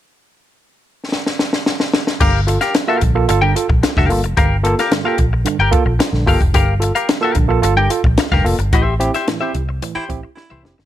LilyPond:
<<
  \new Staff \with { instrumentName = "Clean electric guitar" } { \time 4/4 \key g \dorian \tempo 4 = 110 r1 | <g' bes' f''>16 r8 <g' bes' f''>16 r16 <g' bes' f''>16 r8. <g' bes' g''>16 r8. <g' bes' f''>16 r8 | <g' bes' f''>16 r8 <g' bes' f''>16 r16 <g' bes' f''>16 r8. <g' bes' g''>16 r4 <g' bes' f''>16 r16 | <g' bes' f''>16 r8 <g' bes' f''>16 r16 <g' bes' f''>16 r8. <g' bes' g''>16 r8. <g' bes' f''>16 r8 |
<g' c'' e''>16 r8 <g' c'' e''>16 r16 <g' c'' e''>16 r8. <g' c'' g''>16 r8. <g' c'' e''>16 r8 | }
  \new Staff \with { instrumentName = "Baritone saxophone" } { \time 4/4 \key g \dorian r1 | r1 | r1 | r1 |
r2 r16 e'16 r8 e'8. r16 | }
  \new Staff \with { instrumentName = "Tine electric piano" } { \time 4/4 \key g \dorian r1 | <g, d>16 r16 <f' a'>16 r8 <bes f' a'>16 <g, d>16 <bes f' a'>16 <f' a'>16 <g, d>16 <f' a'>16 r16 <f' a'>16 <g, d>16 <bes f' a'>16 r16 | <g, d>16 r16 <bes f' a'>16 <f' a'>16 <g, d>16 <bes f' a'>16 r8 <g, d>16 r16 <bes f' a'>16 r16 <f' a'>16 <g, d>16 <bes f' a'>16 r16 | <g, d>16 r16 <f' a'>16 r8 <bes f' a'>16 <g, d>16 <bes f' a'>16 <f' a'>16 <g, d>16 <f' a'>16 r16 <f' a'>16 <g, d>16 <bes f' a'>16 r16 |
<a, e>16 r16 <c' e' g'>16 r16 <a, e>16 <c' e' g'>16 <e' g'>16 r16 <a, e>16 r16 <c' e' g'>16 r16 <e' g'>16 <a, e>16 <c' e' g'>16 r16 | }
  \new Staff \with { instrumentName = "Fingered electric bass" } { \clef bass \time 4/4 \key g \dorian r1 | g,,8. r8. bes,,8 g,,8 r16 bes,,16 r16 f,,16 g,,16 f,,16 | g,,8. r8. bes,,8 r16 g,,16 r16 bes,,16 r16 bes,,16 g,,16 f,,16 | g,,8. r8. bes,,8 g,,8 r16 bes,,16 r16 f,,16 f,,16 g,,16 |
a,,8. r8. c,8 r8 a,,16 r8 c,16 f,,16 g,,16 | }
  \new DrumStaff \with { instrumentName = "Drums" } \drummode { \time 4/4 r4 r4 sn16 sn16 sn16 sn16 sn16 sn16 sn16 sn16 | <cymc bd>8 hh16 <hh sn>16 <hh sn>8 <hh bd>8 hh8 hh16 bd16 <hh sn>16 <bd sn>16 hho16 hh16 | <hh bd>8 hh16 <hh sn>16 <hh sn>8 <hh bd>8 hh8 <hh bd>8 <hh sn>16 sn16 <hho bd>16 <hh bd>16 | <hh bd>8 hh16 hh16 <hh sn>8 <hh bd>8 hh8 hh16 bd16 <hh sn>16 <bd sn>16 hho16 hh16 |
<hh bd>8 hh16 <hh sn>16 <hh sn>8 <hh bd>8 hh8 <hh bd>8 sn8 sn16 sn16 | }
>>